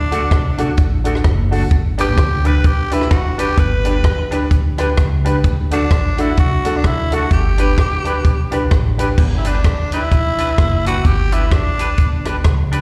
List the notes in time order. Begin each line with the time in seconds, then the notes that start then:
Already playing: D2 D4
0.11 A3 D4 F#4 A4, closed hi-hat
0.31 C2, kick, cross-stick, closed hi-hat
0.58 B1 A3 D4 F#4 A4, closed hi-hat
0.77 A1, kick, closed hi-hat
1.04 A3 D4 F#4 A4, closed hi-hat
1.15 cross-stick
1.24 F#1, kick, cross-stick, closed hi-hat
1.51 A3 D4 F#4 A4, open hi-hat
1.71 G1, kick, closed hi-hat
1.98 D4 G4 B4, closed hi-hat
2.17 D2, kick, cross-stick, closed hi-hat
2.45 D4 G4 B4, closed hi-hat
2.64 B1 G4, kick, closed hi-hat
2.91 D4 E4 G4 B4, closed hi-hat
3.01 cross-stick
3.11 F#1 F#4, kick, cross-stick, closed hi-hat
3.38 D4 G4 B4, closed hi-hat
3.57 G1 B4, kick, closed hi-hat
3.84 D4 G4 B4, closed hi-hat
4.04 D2, kick, cross-stick, closed hi-hat
4.31 D4 G4 B4, closed hi-hat
4.51 D2, kick, closed hi-hat
4.78 D4 G4 B4, cross-stick, closed hi-hat
4.97 C#2, kick, cross-stick, closed hi-hat
5.25 D4 G4 B4, closed hi-hat
5.44 D2, kick, closed hi-hat
5.71 A3 D4 F#4 A4, closed hi-hat
5.90 A1, kick, cross-stick, closed hi-hat
6.18 A3 D4 E4 F#4 A4, closed hi-hat
6.37 C2 F#4, kick, closed hi-hat
6.65 A3 D4 F#4 A4, closed hi-hat
6.77 D4
6.84 D2 E4, kick, cross-stick, closed hi-hat
7.11 A3 D4 F#4 A4, closed hi-hat
7.31 G1 G4, kick, closed hi-hat
7.58 D4 G4 B4, closed hi-hat
7.78 D2, kick, cross-stick, closed hi-hat
8.05 D4 G4 B4, closed hi-hat
8.25 B1, kick, closed hi-hat
8.51 D4 G4 B4, closed hi-hat
8.71 A1, kick, cross-stick, closed hi-hat
8.98 D4 G4 B4, closed hi-hat
9.18 G1, kick, crash
9.38 E4
9.45 D4 G4 B4, closed hi-hat
9.64 D2, kick, cross-stick, closed hi-hat
9.92 D4 E4 G4 B4, closed hi-hat
10.11 B1, kick, closed hi-hat
10.38 D4 G4 B4, closed hi-hat
10.58 F#1, kick, cross-stick, closed hi-hat
10.85 D4 F#4 G4 B4, closed hi-hat
11.05 G1 G4, kick, closed hi-hat
11.32 D4 E4 G4 B4, closed hi-hat
11.51 D4, kick, cross-stick, closed hi-hat
11.79 D4 G4 B4, closed hi-hat
11.98 G1, kick, closed hi-hat
12.25 D4 G4 B4, cross-stick, closed hi-hat
12.44 C#2, kick, cross-stick, closed hi-hat
12.72 D4 G4 B4, closed hi-hat